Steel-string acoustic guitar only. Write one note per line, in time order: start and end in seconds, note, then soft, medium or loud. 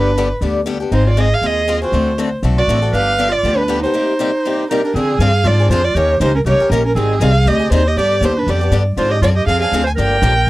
0.00 0.10 B3 medium
0.00 0.10 D4 medium
0.00 0.10 G4 medium
0.18 0.27 D3 medium
0.18 0.27 G3 medium
0.18 0.27 B3 medium
0.18 0.27 D4 medium
0.18 0.27 G4 medium
0.42 0.60 D3 medium
0.42 0.60 G3 medium
0.42 0.60 B3 medium
0.42 0.60 D4 medium
0.42 0.60 G4 medium
0.66 0.76 D3 medium
0.66 0.77 G3 medium
0.66 0.77 B3 medium
0.66 0.77 D4 medium
0.66 0.77 G4 medium
0.80 0.92 B3 soft
0.80 0.92 D4 soft
0.80 0.91 G4 soft
0.92 1.10 G#3 medium
0.92 1.10 C4 medium
0.92 1.10 F4 medium
0.92 1.10 G#4 medium
1.17 1.27 G#3 medium
1.17 1.27 C4 medium
1.17 1.28 F4 medium
1.17 1.28 G#4 medium
1.42 1.60 G#3 medium
1.42 1.61 C4 medium
1.42 1.61 F4 medium
1.42 1.61 G#4 medium
1.68 1.78 G#3 medium
1.68 1.78 C4 medium
1.68 1.78 F4 medium
1.68 1.78 G#4 medium
1.82 1.93 C4 soft
1.82 1.93 F4 soft
1.82 1.93 G#4 medium
1.93 2.11 D3 medium
1.93 2.11 A3 medium
1.93 2.11 C4 medium
1.93 2.12 F#4 medium
1.93 2.11 A4 medium
2.18 2.28 D3 medium
2.18 2.28 A3 medium
2.18 2.29 C4 medium
2.18 2.29 F#4 medium
2.18 2.29 A4 medium
2.43 2.61 D3 medium
2.43 2.61 A3 medium
2.43 2.62 C4 medium
2.43 2.62 F#4 medium
2.43 2.62 A4 medium
2.69 2.79 D3 medium
2.69 2.79 A3 medium
2.69 2.79 C4 medium
2.69 2.79 F#4 medium
2.69 2.79 A4 medium
2.82 2.94 C4 soft
2.82 2.93 F#4 soft
2.82 2.93 A4 medium
2.93 3.11 D3 medium
2.93 3.12 F3 medium
2.93 3.12 B3 medium
2.93 3.12 D4 medium
2.93 3.12 G4 medium
3.18 3.29 D3 medium
3.18 3.29 F3 medium
3.18 3.29 B3 medium
3.18 3.29 D4 medium
3.18 3.29 G4 medium
3.44 3.62 D3 medium
3.44 3.62 F3 medium
3.44 3.62 B3 medium
3.44 3.62 D4 medium
3.44 3.63 G4 medium
3.68 3.79 D3 medium
3.68 3.79 F3 medium
3.68 3.79 B3 medium
3.68 3.79 D4 medium
3.68 3.79 G4 medium
3.84 3.94 B3 soft
3.84 3.95 D4 soft
3.84 3.94 G4 medium
3.94 4.12 C3 medium
3.94 4.12 G3 medium
3.94 4.12 A#3 medium
3.94 4.12 D#4 medium
3.94 4.13 G4 medium
4.19 4.29 C3 medium
4.19 4.30 G3 medium
4.19 4.30 A#3 medium
4.19 4.30 D#4 medium
4.19 4.30 G4 medium
4.45 4.63 C3 medium
4.45 4.63 G3 medium
4.45 4.63 A#3 medium
4.45 4.63 D#4 medium
4.45 4.64 G4 medium
4.71 4.80 C3 medium
4.71 4.80 G3 medium
4.71 4.80 A#3 medium
4.71 4.81 D#4 medium
4.71 4.81 G4 medium
4.86 4.96 A#3 soft
4.86 4.96 D#4 soft
4.96 5.13 D3 medium
4.96 5.13 F3 medium
4.96 5.14 C4 medium
4.96 5.14 D4 medium
4.96 5.14 G#4 medium
5.20 5.30 D3 medium
5.20 5.30 F3 medium
5.20 5.30 C4 medium
5.20 5.31 D4 medium
5.20 5.31 G#4 medium
5.44 5.58 D3 medium
5.44 5.58 F3 medium
5.44 5.58 C4 medium
5.44 5.59 D4 medium
5.44 5.58 G#4 medium
5.60 5.71 C4 soft
5.60 5.71 D4 soft
5.60 5.70 G#4 medium
5.71 5.80 D3 medium
5.71 5.81 F3 medium
5.71 5.81 C4 medium
5.71 5.81 D4 medium
5.71 5.81 G#4 loud
5.96 6.13 D#3 medium
5.96 6.14 A#3 medium
5.96 6.14 C#4 medium
5.96 6.14 G4 medium
5.96 6.14 A#4 medium
6.21 6.31 D#3 medium
6.21 6.31 A#3 medium
6.21 6.31 C#4 medium
6.21 6.31 G4 medium
6.21 6.31 A#4 medium
6.46 6.59 D#3 medium
6.46 6.59 A#3 medium
6.46 6.59 C#4 medium
6.46 6.60 G4 medium
6.46 6.59 A#4 medium
6.60 6.72 C#4 medium
6.60 6.71 G4 soft
6.60 6.71 A#4 medium
6.72 6.81 D#3 medium
6.72 6.81 A#3 medium
6.72 6.82 C#4 medium
6.72 6.82 G4 medium
6.72 6.82 A#4 loud
6.96 7.14 D#3 medium
6.96 7.14 G3 medium
6.96 7.14 C4 medium
6.96 7.14 D#4 medium
6.96 7.15 G#4 medium
7.21 7.31 D#3 medium
7.21 7.31 G3 medium
7.21 7.31 C4 medium
7.21 7.31 D#4 medium
7.21 7.32 G#4 loud
7.47 7.60 D#3 medium
7.47 7.60 G3 medium
7.47 7.60 C4 medium
7.47 7.60 D#4 medium
7.47 7.58 G#4 medium
7.59 7.71 C4 soft
7.59 7.71 D#4 soft
7.59 7.71 G#4 medium
7.72 7.81 D#3 medium
7.72 7.81 G3 loud
7.72 7.82 C4 medium
7.72 7.82 D#4 loud
7.72 7.82 G#4 loud
7.98 8.15 D3 medium
7.98 8.15 G3 medium
7.98 8.15 B3 medium
7.98 8.15 D4 medium
7.98 8.16 G4 medium
8.22 8.32 D3 medium
8.22 8.32 G3 medium
8.22 8.32 B3 medium
8.22 8.32 D4 medium
8.22 8.33 G4 medium
8.48 8.60 D3 medium
8.48 8.61 G3 medium
8.48 8.61 B3 medium
8.48 8.61 D4 medium
8.48 8.60 G4 medium
8.61 8.71 B3 soft
8.61 8.72 D4 soft
8.61 8.72 G4 medium
8.72 8.82 D3 medium
8.72 8.82 G3 medium
8.72 8.82 B3 medium
8.72 8.82 D4 medium
8.72 8.82 G4 medium
8.97 9.15 D3 medium
8.97 9.15 F3 medium
8.97 9.15 C4 medium
8.97 9.15 D4 medium
8.97 9.16 G#4 medium
9.23 9.32 D3 medium
9.23 9.32 F3 medium
9.23 9.33 C4 medium
9.23 9.33 D4 medium
9.23 9.33 G#4 loud
9.48 9.61 D3 medium
9.48 9.61 F3 medium
9.48 9.61 C4 medium
9.48 9.61 D4 medium
9.48 9.61 G#4 medium
9.62 9.73 C4 soft
9.62 9.73 D4 medium
9.62 9.72 G#4 medium
9.73 9.83 D3 medium
9.73 9.83 F3 medium
9.73 9.83 C4 medium
9.73 9.83 D4 medium
9.73 9.83 G#4 medium
9.98 10.16 D3 medium
9.98 10.16 F3 medium
9.98 10.16 A#3 medium
9.98 10.16 D4 medium
9.98 10.16 G4 medium
10.23 10.32 D3 medium
10.23 10.33 F3 medium
10.23 10.33 A#3 medium
10.23 10.33 D4 medium
10.23 10.33 G4 medium